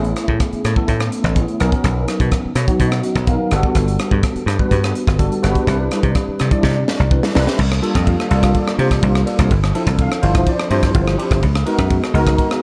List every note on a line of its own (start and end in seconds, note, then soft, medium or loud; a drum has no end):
0.00 0.13 A1 medium
0.00 0.71 A3 medium
0.00 0.71 B3 medium
0.00 0.71 C#4 medium
0.00 0.71 E4 medium
0.00 0.71 G#4 medium
0.04 closed hi-hat soft
0.16 cross-stick medium
0.16 closed hi-hat medium
0.28 0.38 A2 medium
0.28 kick medium
0.40 kick medium
0.40 cross-stick medium
0.40 closed hi-hat medium
0.53 muted slap bass stroke soft
0.53 closed hi-hat soft
0.65 0.75 A2 medium
0.65 cross-stick medium
0.65 closed hi-hat medium
0.76 1.33 A3 medium
0.76 1.33 B3 medium
0.76 1.33 C#4 medium
0.76 1.33 E4 medium
0.76 1.33 A4 medium
0.76 kick medium
0.88 1.08 A2 medium
0.88 kick medium
0.88 closed hi-hat medium
1.00 cross-stick medium
1.00 closed hi-hat soft
1.12 closed hi-hat medium
1.24 1.44 A1 medium
1.24 kick medium
1.24 cross-stick medium
1.35 1.58 A3 medium
1.35 1.58 B3 medium
1.35 1.58 C#4 medium
1.35 1.58 E4 medium
1.35 1.58 G#4 medium
1.35 kick loud
1.35 closed hi-hat medium
1.48 closed hi-hat soft
1.59 1.71 B1 medium
1.59 2.50 F#3 medium
1.59 2.50 B3 medium
1.59 2.50 C#4 medium
1.59 2.50 D#4 medium
1.59 2.50 A#4 medium
1.59 cross-stick medium
1.59 closed hi-hat medium
1.72 kick medium
1.72 closed hi-hat soft
1.84 2.05 B1 medium
1.84 kick medium
1.84 cross-stick medium
1.84 closed hi-hat medium
2.08 cross-stick medium
2.08 closed hi-hat medium
2.20 2.30 B2 medium
2.20 kick medium
2.20 closed hi-hat soft
2.31 kick medium
2.31 cross-stick medium
2.31 closed hi-hat medium
2.45 muted slap bass stroke soft
2.55 2.66 B2 medium
2.55 2.78 C#5 medium
2.55 cross-stick medium
2.55 closed hi-hat medium
2.68 3.24 F#3 medium
2.68 3.24 B3 medium
2.68 3.24 C#4 medium
2.68 3.24 D#4 medium
2.68 3.24 F#4 medium
2.68 kick medium
2.68 closed hi-hat soft
2.79 3.00 B2 medium
2.79 3.24 D#5 medium
2.79 kick medium
2.79 closed hi-hat medium
2.91 cross-stick medium
2.91 closed hi-hat soft
3.03 closed hi-hat medium
3.15 3.36 B1 medium
3.15 kick medium
3.15 cross-stick medium
3.15 closed hi-hat soft
3.27 3.50 F#3 medium
3.27 3.50 B3 medium
3.27 3.50 C#4 medium
3.27 3.50 D#4 medium
3.27 3.50 A#4 medium
3.27 3.50 F5 medium
3.27 kick loud
3.27 closed hi-hat medium
3.51 3.62 G1 medium
3.51 4.42 G3 medium
3.51 4.42 B3 medium
3.51 4.42 D4 medium
3.51 4.42 F#4 medium
3.51 4.43 A4 medium
3.51 3.74 F#5 medium
3.51 cross-stick medium
3.51 closed hi-hat medium
3.63 kick medium
3.75 3.96 G1 medium
3.75 kick medium
3.75 cross-stick medium
3.75 closed hi-hat medium
3.88 closed hi-hat soft
3.99 cross-stick medium
3.99 closed hi-hat medium
4.11 4.22 G2 medium
4.11 kick medium
4.23 kick medium
4.23 cross-stick medium
4.23 closed hi-hat medium
4.36 muted slap bass stroke soft
4.36 closed hi-hat soft
4.46 4.57 G2 medium
4.46 cross-stick medium
4.46 closed hi-hat medium
4.59 5.16 G3 medium
4.59 5.16 B3 medium
4.59 5.16 D4 medium
4.59 5.16 F#4 medium
4.59 5.16 B4 medium
4.59 kick medium
4.71 4.92 G2 medium
4.71 kick medium
4.71 closed hi-hat medium
4.84 cross-stick medium
4.84 closed hi-hat soft
4.95 closed hi-hat medium
5.07 5.28 G1 medium
5.07 kick medium
5.07 cross-stick medium
5.19 5.42 G3 medium
5.19 5.41 B3 medium
5.19 5.42 D4 medium
5.19 5.41 F#4 medium
5.19 5.42 A4 medium
5.19 kick medium
5.19 closed hi-hat medium
5.32 closed hi-hat soft
5.43 5.54 G1 medium
5.43 5.66 G3 medium
5.43 5.66 B3 medium
5.43 5.66 D4 medium
5.43 5.65 F#4 medium
5.43 5.66 B4 medium
5.43 cross-stick medium
5.43 closed hi-hat soft
5.55 kick medium
5.55 closed hi-hat soft
5.67 5.88 C2 loud
5.67 6.46 G3 medium
5.67 6.47 C4 medium
5.67 6.47 D4 medium
5.67 6.46 E4 medium
5.67 6.47 B4 medium
5.67 kick medium
5.67 cross-stick medium
5.67 closed hi-hat medium
5.91 cross-stick medium
5.91 closed hi-hat medium
6.03 6.13 C3 medium
6.03 kick medium
6.03 closed hi-hat soft
6.15 kick medium
6.15 cross-stick medium
6.15 closed hi-hat medium
6.28 muted slap bass stroke soft
6.39 6.50 C3 medium
6.39 cross-stick medium
6.39 closed hi-hat medium
6.51 7.08 G3 medium
6.51 7.08 C4 medium
6.51 7.08 D4 medium
6.51 7.08 E4 medium
6.51 7.08 D5 medium
6.51 kick medium
6.51 closed hi-hat soft
6.63 6.84 C3 medium
6.63 kick medium
6.63 snare soft
6.88 snare medium
7.00 7.20 C2 medium
7.11 7.34 G3 medium
7.11 7.34 C4 medium
7.11 7.34 D4 medium
7.11 7.34 E4 medium
7.11 7.34 B4 medium
7.11 kick loud
7.23 snare medium
7.35 7.46 C2 medium
7.35 7.58 G3 medium
7.35 7.58 C4 medium
7.35 7.58 D4 medium
7.35 7.58 E4 medium
7.35 7.58 B4 medium
7.35 snare medium
7.47 snare medium
7.59 7.79 C2 medium
7.59 kick medium
7.59 crash loud
7.72 cross-stick medium
7.82 8.28 G3 medium
7.82 8.28 A#3 medium
7.82 8.28 D4 medium
7.82 8.28 F4 medium
7.82 8.28 A4 medium
7.82 ride medium
7.95 8.16 F2 medium
7.95 kick medium
7.95 cross-stick medium
7.95 ride medium
8.03 8.06 E5 soft
8.03 kick medium
8.03 ride soft
8.08 8.52 F5 medium
8.20 cross-stick medium
8.30 8.51 C2 medium
8.30 8.76 G3 medium
8.30 8.76 A#3 medium
8.30 8.76 D4 medium
8.30 8.76 F4 medium
8.30 8.76 A4 medium
8.30 ride medium
8.43 kick medium
8.43 cross-stick medium
8.43 ride medium
8.55 8.79 D5 medium
8.55 kick medium
8.55 ride soft
8.68 cross-stick medium
8.79 8.99 C3 medium
8.79 9.24 G3 medium
8.79 9.24 A#3 medium
8.79 9.25 D4 medium
8.79 9.25 F4 medium
8.79 9.24 G4 medium
8.79 9.48 C5 medium
8.79 ride medium
8.91 kick medium
8.91 cross-stick medium
8.91 ride medium
9.03 9.23 C2 medium
9.03 kick medium
9.03 ride medium
9.15 cross-stick medium
9.26 9.51 G3 medium
9.26 9.51 A#3 medium
9.26 9.50 D4 medium
9.26 9.51 F4 medium
9.26 9.51 A4 medium
9.26 ride medium
9.39 9.49 C2 medium
9.39 kick medium
9.39 cross-stick medium
9.39 ride medium
9.51 9.71 G1 medium
9.51 kick medium
9.51 ride medium
9.64 cross-stick medium
9.74 10.20 F3 medium
9.74 10.20 C4 medium
9.74 10.20 D4 medium
9.74 10.20 E4 medium
9.74 10.20 A4 medium
9.74 ride medium
9.87 10.07 C2 medium
9.87 kick medium
9.87 cross-stick medium
9.87 ride medium
9.99 10.45 F5 medium
9.99 kick loud
9.99 ride medium
10.12 cross-stick medium
10.22 10.43 G1 medium
10.22 10.68 F3 medium
10.22 10.68 C4 medium
10.22 10.68 D4 medium
10.22 10.68 E4 medium
10.22 10.68 C5 medium
10.22 ride medium
10.35 kick medium
10.35 cross-stick medium
10.35 ride medium
10.47 10.71 D5 medium
10.47 kick medium
10.47 ride medium
10.60 cross-stick medium
10.70 10.91 G2 medium
10.70 11.16 F3 medium
10.70 11.16 C4 medium
10.70 11.16 D4 medium
10.70 11.16 E4 medium
10.70 11.16 G4 medium
10.70 11.39 C5 medium
10.70 ride medium
10.83 kick medium
10.83 cross-stick medium
10.83 ride medium
10.95 11.15 G1 medium
10.95 kick loud
10.95 ride medium
11.08 cross-stick medium
11.18 11.43 F3 medium
11.18 11.42 C4 medium
11.18 11.42 D4 medium
11.18 11.42 E4 medium
11.18 11.42 G4 medium
11.18 ride medium
11.31 11.41 G1 medium
11.31 kick medium
11.31 cross-stick medium
11.31 ride medium
11.43 11.63 C#2 medium
11.43 kick medium
11.43 ride medium
11.55 cross-stick medium
11.66 12.12 G#3 medium
11.66 12.12 B3 medium
11.66 12.12 D#4 medium
11.66 12.12 F#4 medium
11.66 12.12 A#4 medium
11.66 ride medium
11.78 11.99 F#2 medium
11.78 kick medium
11.78 cross-stick medium
11.78 ride medium
11.90 kick loud
11.90 ride medium
12.04 cross-stick medium
12.14 12.34 C#2 medium
12.14 12.60 G#3 medium
12.14 12.60 B3 medium
12.14 12.60 D#4 medium
12.14 12.60 F#4 medium
12.14 12.60 A#4 loud
12.14 ride medium
12.27 kick medium
12.27 cross-stick medium
12.27 ride medium
12.38 kick medium
12.38 ride medium
12.51 cross-stick medium